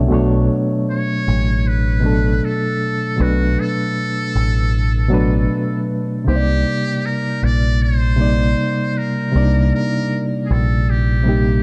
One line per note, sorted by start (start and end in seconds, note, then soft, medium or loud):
0.00 0.08 B2 medium
0.00 0.10 F#3 medium
0.00 0.11 A3 medium
0.00 0.13 C#4 medium
0.00 0.13 D4 medium
0.00 0.13 A4 medium
0.00 0.13 C#5 medium
0.00 0.13 E5 medium
0.00 0.13 F#5 medium
0.00 0.13 G5 medium
0.00 0.13 A5 medium
0.08 0.48 B1 medium
0.08 1.46 B2 medium
0.08 1.46 F#3 medium
0.08 1.47 A3 medium
0.13 1.48 D4 medium
0.13 1.48 C#5 medium
0.91 1.69 C#5 loud
1.28 2.39 A1 medium
1.68 2.46 B4 medium
2.01 3.04 B2 medium
2.01 3.05 F#3 medium
2.01 3.06 A3 medium
2.05 3.06 D4 medium
2.05 3.07 A4 medium
2.45 3.23 A4 medium
3.16 3.56 B1 loud
3.16 4.53 B2 medium
3.16 4.54 F#3 medium
3.16 4.55 A3 medium
3.16 4.55 D4 medium
3.21 3.62 F#4 loud
3.21 4.56 B4 medium
3.60 5.89 A4 loud
4.36 5.46 A1 medium
5.09 6.12 B2 medium
5.09 6.13 F#3 medium
5.09 6.13 A3 medium
5.09 6.14 D4 medium
5.14 6.15 B4 medium
6.24 6.63 C2 medium
6.24 7.61 C3 medium
6.24 7.62 G3 medium
6.24 7.63 A#3 medium
6.24 7.63 D#4 medium
6.29 7.07 G4 loud
6.29 6.36 C5 medium
6.36 7.67 D5 medium
7.06 7.46 A#4 loud
7.43 8.54 A#1 medium
7.43 7.84 D5 loud
7.83 8.99 C5 medium
8.16 9.20 C3 medium
8.16 9.20 G3 medium
8.16 9.21 A#3 medium
8.20 9.22 D#4 medium
8.20 9.22 D5 medium
8.98 9.74 A#4 medium
9.31 10.69 C3 medium
9.31 10.69 G3 medium
9.31 10.70 A#3 medium
9.35 9.71 C2 medium
9.35 9.42 D4 soft
9.35 10.71 D5 medium
9.42 10.74 D#4 medium
9.75 10.22 A#4 medium
10.46 10.53 G#4 medium
10.51 11.61 A#1 medium
10.51 10.92 A4 medium
10.90 11.63 G4 medium
11.24 11.63 C3 medium
11.24 11.63 G3 medium
11.24 11.63 A#3 medium
11.28 11.63 D#4 medium
11.28 11.63 G4 medium